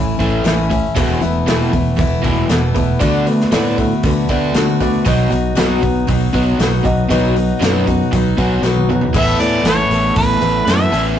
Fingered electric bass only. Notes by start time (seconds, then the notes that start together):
Already playing: A1
0.20 A1
0.44 A1
0.97 E1
1.21 E1
1.46 E1
1.73 E1
1.99 E1
2.25 E1
2.49 E1
2.76 E1
3.01 D2
3.52 A2
4.04 D2
4.29 D2
4.54 D2
5.06 B1
5.31 B1
5.57 B1
5.83 B1
6.09 B1
6.34 B1
6.59 B1
6.85 B1
7.11 B1
7.60 F#2
8.13 B1
8.38 B1
8.62 B1
9.14 A1
9.39 A2
9.64 A1
9.90 A1
10.16 A1
10.41 A1
10.67 F#2
10.92 A1